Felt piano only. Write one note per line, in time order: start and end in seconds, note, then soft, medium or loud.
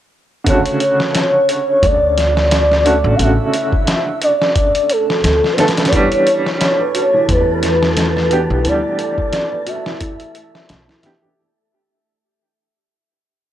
5.92 6.10 E4 medium
6.80 6.93 B4 medium
6.94 7.12 F#4 medium
7.14 7.28 E3 medium
7.28 7.47 E4 medium
8.16 8.29 B4 medium
8.30 8.48 F#4 medium
8.50 8.64 E3 medium
8.64 8.83 E4 medium
9.52 9.65 B4 medium
9.66 9.84 F#4 medium
9.86 10.00 E3 medium
10.00 10.19 E4 medium
10.88 11.02 E4 medium
11.03 11.20 E5 medium
11.22 11.36 G4 loud